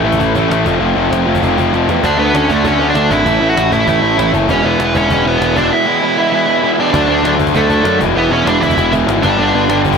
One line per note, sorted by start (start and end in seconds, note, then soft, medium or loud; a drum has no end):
0.03 0.18 A1 medium
0.03 0.18 A2 medium
0.03 0.18 E3 medium
0.03 0.20 A3 medium
0.03 0.19 C#4 medium
0.03 0.20 E4 medium
0.12 cajon bass medium
0.19 0.34 A1 medium
0.19 0.35 A2 medium
0.19 0.35 E3 loud
0.19 0.36 A3 loud
0.19 0.34 C#4 loud
0.19 0.33 E4 loud
0.19 cajon bass loud
0.34 0.48 A1 medium
0.34 0.48 A2 medium
0.34 0.49 E3 medium
0.34 0.50 A3 medium
0.34 0.50 C#4 medium
0.34 0.51 E4 medium
0.34 cajon bass medium
0.49 0.64 A1 loud
0.49 0.64 A2 loud
0.49 0.64 E3 medium
0.49 0.65 A3 loud
0.49 0.65 C#4 loud
0.49 0.66 E4 loud
0.49 cajon slap loud
0.65 0.79 F1 loud
0.65 0.80 F2 medium
0.65 0.80 C3 loud
0.65 0.81 F3 loud
0.65 0.80 A3 medium
0.65 0.79 C4 loud
0.65 0.78 F4 loud
0.65 cajon bass loud
0.80 0.95 F1 medium
0.80 0.94 F2 medium
0.80 0.95 C3 loud
0.80 0.94 F3 medium
0.80 0.95 A3 medium
0.80 0.95 C4 medium
0.80 0.96 F4 loud
0.95 1.10 F1 medium
0.95 1.10 F2 loud
0.95 1.10 C3 medium
0.95 1.11 F3 medium
0.95 1.11 A3 medium
0.95 1.10 C4 medium
0.95 1.09 F4 medium
1.10 1.25 F1 medium
1.10 1.25 F2 medium
1.10 1.25 C3 medium
1.10 1.25 F3 medium
1.10 1.26 A3 medium
1.10 1.26 C4 loud
1.10 1.27 F4 loud
1.10 cajon slap loud
1.26 1.41 F1 medium
1.26 1.42 F2 medium
1.26 1.42 C3 medium
1.26 1.42 F3 medium
1.26 1.41 A3 medium
1.26 1.41 C4 medium
1.26 1.40 F4 medium
1.35 cajon bass loud
1.41 1.57 F1 medium
1.41 1.56 F2 medium
1.41 1.57 C3 loud
1.41 1.56 F3 medium
1.41 1.57 A3 medium
1.41 1.58 C4 loud
1.41 1.58 F4 loud
1.41 cajon bass loud
1.57 1.72 F1 medium
1.57 1.73 F2 medium
1.57 1.72 C3 medium
1.57 1.74 F3 medium
1.57 1.73 A3 medium
1.57 1.72 C4 medium
1.57 1.72 F4 medium
1.57 cajon bass medium
1.73 1.87 F1 medium
1.73 1.88 F2 medium
1.73 1.88 C3 medium
1.73 1.86 F3 medium
1.73 1.86 A3 medium
1.73 1.87 C4 loud
1.73 1.88 F4 loud
1.73 cajon slap medium
1.87 2.03 E2 medium
1.87 2.03 F2 medium
1.87 2.03 C3 medium
1.87 2.02 F3 medium
1.87 2.02 A3 medium
1.87 2.03 C4 medium
1.87 2.03 F4 medium
1.87 cajon slap medium
2.03 2.17 D2 medium
2.03 2.19 D3 loud
2.03 2.19 A3 medium
2.03 2.18 D4 medium
2.03 2.17 F#4 loud
2.03 2.18 D5 medium
2.03 cajon bass loud
2.18 2.32 D2 medium
2.18 2.32 D3 medium
2.18 2.34 A3 medium
2.18 2.33 B3 medium
2.18 2.34 D4 medium
2.18 2.34 F#4 medium
2.18 2.36 B4 medium
2.33 2.47 D2 medium
2.33 2.50 D3 medium
2.33 2.49 A3 medium
2.33 2.50 C#4 medium
2.33 2.49 D4 medium
2.33 2.47 F#4 loud
2.33 2.51 C#5 medium
2.33 cajon slap loud
2.49 2.62 D2 medium
2.49 2.63 D3 medium
2.49 2.64 A3 medium
2.49 2.65 A3 medium
2.49 2.64 D4 medium
2.49 2.65 F#4 medium
2.49 2.66 A4 medium
2.49 cajon bass medium
2.64 2.78 D2 medium
2.64 2.80 D3 medium
2.64 2.79 A3 loud
2.64 2.87 C#4 medium
2.64 2.79 D4 loud
2.64 2.78 F#4 loud
2.64 2.89 C#5 medium
2.64 cajon bass loud
2.79 2.93 D2 medium
2.79 2.94 D3 medium
2.79 2.95 A3 medium
2.79 2.95 D4 medium
2.79 2.96 F#4 medium
2.89 3.10 D4 medium
2.89 3.12 D5 loud
2.94 3.08 D2 medium
2.94 3.12 D3 medium
2.94 3.11 A3 medium
2.94 3.10 D4 medium
2.94 3.10 F#4 medium
2.94 cajon slap loud
3.10 3.23 G#1 medium
3.10 3.26 D3 medium
3.10 3.26 A3 medium
3.10 3.26 D4 medium
3.10 3.47 E4 medium
3.10 3.25 F#4 medium
3.10 3.49 E5 loud
3.10 cajon bass medium
3.26 3.39 A1 medium
3.26 3.42 A2 medium
3.26 3.42 E3 medium
3.26 3.41 A3 medium
3.26 3.40 C#4 loud
3.26 3.40 E4 loud
3.26 cajon bass loud
3.41 3.54 A1 medium
3.41 3.54 A2 medium
3.41 3.55 E3 medium
3.41 3.56 A3 medium
3.41 3.56 C#4 medium
3.41 3.58 E4 medium
3.49 3.71 F#4 medium
3.49 3.72 F#5 medium
3.55 3.70 A1 medium
3.55 3.73 A2 medium
3.55 3.72 E3 medium
3.55 3.71 A3 loud
3.55 3.71 C#4 loud
3.55 3.70 E4 loud
3.55 cajon slap loud
3.71 3.85 A1 medium
3.71 3.85 A2 medium
3.71 3.87 E3 medium
3.71 3.87 A3 medium
3.71 3.87 C#4 medium
3.71 3.88 E4 loud
3.71 3.87 E4 medium
3.71 3.88 E5 loud
3.71 cajon bass medium
3.87 4.00 A1 medium
3.87 4.02 A2 loud
3.87 4.03 E3 medium
3.87 4.01 A3 loud
3.87 4.01 C#4 medium
3.87 4.31 E4 medium
3.87 4.01 E4 loud
3.87 4.31 E5 medium
3.87 cajon bass loud
4.01 4.16 A1 medium
4.01 4.16 A2 medium
4.01 4.18 E3 medium
4.01 4.17 A3 medium
4.01 4.18 C#4 medium
4.01 4.19 E4 loud
4.17 4.31 A1 medium
4.17 4.33 A2 medium
4.17 4.34 E3 medium
4.17 4.33 A3 medium
4.17 4.32 C#4 medium
4.17 4.32 E4 medium
4.17 cajon slap loud
4.33 4.48 F#1 loud
4.33 4.48 A2 medium
4.33 4.48 E3 medium
4.33 4.48 A3 medium
4.33 4.48 C#4 medium
4.33 4.50 E4 medium
4.33 cajon bass medium
4.48 4.62 E1 loud
4.48 4.65 E2 loud
4.48 4.64 B2 loud
4.48 4.66 E3 loud
4.48 4.65 G#3 loud
4.48 4.64 B3 loud
4.48 4.64 C#4 medium
4.48 4.63 E4 medium
4.48 4.66 C#5 medium
4.48 cajon bass medium
4.64 4.77 E1 medium
4.64 4.79 E2 medium
4.64 4.79 B2 medium
4.64 4.79 E3 medium
4.64 4.80 G#3 medium
4.64 4.80 B3 medium
4.64 4.94 B3 medium
4.64 4.81 E4 medium
4.64 4.96 B4 loud
4.78 4.92 E1 medium
4.78 4.94 E2 medium
4.78 4.94 B2 loud
4.78 4.95 E3 medium
4.78 4.95 G#3 medium
4.78 4.94 B3 medium
4.78 4.93 E4 loud
4.78 cajon slap loud
4.95 5.08 E1 medium
4.95 5.08 E2 medium
4.95 5.08 B2 medium
4.95 5.09 E3 medium
4.95 5.10 G#3 medium
4.95 5.10 B3 medium
4.95 5.25 C#4 medium
4.95 5.11 E4 loud
4.95 5.24 C#5 loud
4.95 cajon bass medium
5.09 5.23 E1 medium
5.09 5.25 E2 medium
5.09 5.24 B2 loud
5.09 5.27 E3 loud
5.09 5.26 G#3 loud
5.09 5.26 B3 loud
5.09 5.25 E4 loud
5.09 cajon bass loud
5.25 5.38 E1 medium
5.25 5.40 E2 medium
5.25 5.40 B2 medium
5.25 5.41 E3 medium
5.25 5.41 G#3 medium
5.25 5.42 B3 medium
5.25 5.55 B3 medium
5.25 5.42 E4 medium
5.25 5.57 B4 loud
5.40 5.53 E1 medium
5.40 5.55 E2 medium
5.40 5.55 B2 medium
5.40 5.57 E3 medium
5.40 5.56 G#3 medium
5.40 5.55 B3 medium
5.40 cajon slap loud
5.44 5.55 E4 medium
5.56 5.69 E1 medium
5.56 5.70 E2 medium
5.56 5.71 B2 medium
5.56 5.70 E3 medium
5.56 5.71 G#3 medium
5.56 5.71 B3 medium
5.56 5.71 D4 medium
5.56 5.72 E4 medium
5.56 5.71 D5 medium
5.56 cajon bass medium
5.71 5.87 E2 loud
5.71 5.86 B2 loud
5.71 5.87 E3 medium
5.71 5.86 G#3 medium
5.71 5.86 B3 loud
5.71 5.85 E4 loud
5.71 6.75 E4 medium
5.71 6.75 E5 medium
5.86 6.01 E2 medium
5.86 6.01 B2 medium
5.86 6.01 E3 medium
5.86 6.02 G#3 medium
5.86 6.03 B3 medium
5.86 6.03 E4 medium
6.02 6.18 E2 medium
6.02 6.17 B2 loud
6.02 6.18 E3 medium
6.02 6.17 G#3 medium
6.02 6.16 B3 loud
6.02 6.16 E4 loud
6.17 6.31 E2 medium
6.17 6.31 B2 medium
6.17 6.30 E3 medium
6.17 6.31 G#3 medium
6.17 6.32 B3 medium
6.17 6.32 E4 medium
6.31 6.47 E2 loud
6.31 6.47 B2 loud
6.31 6.47 E3 medium
6.31 6.47 G#3 loud
6.31 6.46 B3 loud
6.31 6.46 E4 loud
6.47 6.61 E2 medium
6.47 6.62 B2 medium
6.47 6.61 E3 medium
6.47 6.62 G#3 medium
6.47 6.62 B3 loud
6.47 6.63 E4 loud
6.62 6.78 E2 medium
6.62 6.78 B2 medium
6.62 6.79 E3 medium
6.62 6.78 G#3 medium
6.62 6.77 B3 medium
6.62 6.77 E4 medium
6.78 6.93 E2 medium
6.78 6.93 B2 medium
6.78 6.92 E3 medium
6.78 6.93 G#3 medium
6.78 6.93 B3 medium
6.78 7.36 D4 medium
6.78 6.92 E4 medium
6.78 7.36 D5 medium
6.93 7.07 D2 medium
6.93 7.09 D3 medium
6.93 7.08 F#3 loud
6.93 7.08 A3 loud
6.93 7.07 D4 loud
6.93 cajon bass loud
7.07 7.22 D2 medium
7.07 7.22 D3 medium
7.07 7.23 F#3 medium
7.07 7.24 A3 medium
7.07 7.24 D4 medium
7.22 7.52 D2 medium
7.22 7.39 D3 loud
7.22 7.38 F#3 loud
7.22 7.38 A3 loud
7.22 7.37 D4 loud
7.22 cajon slap loud
7.38 7.52 D3 medium
7.38 7.53 F#3 medium
7.38 7.53 A3 medium
7.38 7.54 D4 medium
7.38 cajon bass medium
7.47 cajon bass medium
7.53 7.83 D2 medium
7.53 7.70 D3 medium
7.53 7.69 F#3 loud
7.53 7.69 A3 medium
7.53 7.98 A3 medium
7.53 7.68 D4 loud
7.53 7.99 A4 medium
7.53 cajon bass loud
7.69 7.83 D3 loud
7.69 7.83 F#3 medium
7.69 7.84 A3 loud
7.69 7.84 D4 loud
7.69 cajon bass medium
7.84 7.99 F#2 medium
7.84 7.98 D3 medium
7.84 7.99 F#3 medium
7.84 8.00 A3 medium
7.84 8.00 D4 loud
7.84 cajon slap loud
7.99 8.14 E1 loud
7.99 8.16 E2 loud
7.99 8.15 B2 loud
7.99 8.15 E3 loud
7.99 8.15 G#3 loud
7.99 8.15 B3 loud
7.99 8.13 E4 loud
7.99 cajon bass loud
8.15 8.30 E1 loud
8.15 8.29 E2 medium
8.15 8.30 B2 loud
8.15 8.30 E3 loud
8.15 8.30 G#3 medium
8.15 8.32 B3 loud
8.15 8.30 B3 medium
8.15 8.31 E4 loud
8.15 8.33 B4 loud
8.30 8.45 E1 medium
8.30 8.46 E2 medium
8.30 8.45 B2 loud
8.30 8.47 E3 medium
8.30 8.46 G#3 medium
8.30 8.46 B3 medium
8.30 8.46 C#4 medium
8.30 8.45 E4 loud
8.30 8.48 C#5 medium
8.45 8.75 E1 medium
8.45 8.61 E2 medium
8.45 8.61 B2 loud
8.45 8.59 E3 medium
8.45 8.60 G#3 loud
8.45 8.60 B3 loud
8.45 8.61 D4 medium
8.45 8.61 E4 loud
8.45 8.62 D5 loud
8.45 cajon slap loud
8.60 8.77 E2 medium
8.60 8.76 B2 medium
8.60 8.77 E3 medium
8.60 8.76 G#3 loud
8.60 8.75 B3 medium
8.60 8.90 E4 medium
8.60 8.75 E4 medium
8.60 8.93 E5 loud
8.60 cajon bass medium
8.70 cajon bass medium
8.76 9.06 E1 medium
8.76 8.92 E2 medium
8.76 8.92 B2 medium
8.76 8.90 E3 medium
8.76 8.90 G#3 medium
8.76 8.91 B3 medium
8.76 8.92 E4 loud
8.76 cajon bass loud
8.91 9.07 E2 medium
8.91 9.06 B2 medium
8.91 9.07 E3 loud
8.91 9.07 G#3 loud
8.91 9.06 B3 loud
8.91 9.05 E4 loud
8.91 cajon bass loud
9.06 9.22 G#1 medium
9.06 9.23 E2 medium
9.06 9.22 B2 medium
9.06 9.22 E3 medium
9.06 9.22 G#3 medium
9.06 9.22 B3 medium
9.06 9.22 E4 medium
9.06 cajon slap loud
9.21 9.38 G1 loud
9.21 9.38 G2 loud
9.21 9.38 D3 loud
9.21 9.37 G3 loud
9.21 9.37 B3 loud
9.21 9.80 D4 medium
9.21 9.36 D4 loud
9.21 9.81 D5 loud
9.21 cajon bass loud
9.37 9.53 G1 medium
9.37 9.51 G2 medium
9.37 9.53 D3 medium
9.37 9.53 G3 loud
9.37 9.54 B3 loud
9.37 9.54 D4 loud
9.53 9.68 G1 medium
9.53 9.70 G2 medium
9.53 9.69 D3 medium
9.53 9.69 G3 medium
9.53 9.68 B3 loud
9.53 9.67 D4 medium
9.69 9.98 G1 medium
9.69 9.83 G2 medium
9.69 9.83 D3 loud
9.69 9.84 G3 loud
9.69 9.85 B3 loud
9.69 9.85 D4 loud
9.69 cajon slap loud
9.84 9.98 G2 medium
9.84 9.98 D3 medium
9.84 9.98 G3 loud
9.84 9.98 B3 loud
9.84 9.98 D4 medium
9.84 cajon bass medium
9.93 cajon bass loud